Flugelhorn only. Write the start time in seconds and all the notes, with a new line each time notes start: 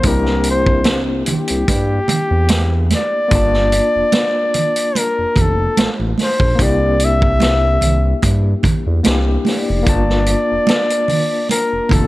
0.07 A#4
0.50 C5
1.32 G4
2.95 D5
4.98 A#4
5.41 A4
6.23 C5
6.62 D5
7.04 E5
9.49 D5
11.51 A#4
11.93 A4